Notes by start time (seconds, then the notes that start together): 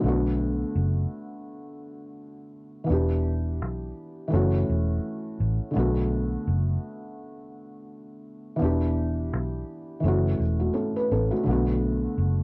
0.00 B1 D3 A3
0.06 B3 F#4
0.75 F#1
2.84 E3 B3
2.90 E1 D4 G4
3.62 B1
4.28 E3 A3
4.33 F#1 C#4 F#4
4.69 E1
5.40 A1
5.71 D3 A3
5.76 B1 B3 F#4
6.47 F#1
8.56 E3 B3
8.61 E1 D4 G4
9.33 B1
10.00 F#1 E3 A3
10.05 C#4 F#4
10.40 E1
10.60 A3 F#4
10.73 C#4 A4
10.96 B4
11.11 A1 C#4 A4
11.31 A3 F#4
11.43 B1 D3 A3
11.49 B3 F#4
12.18 F#1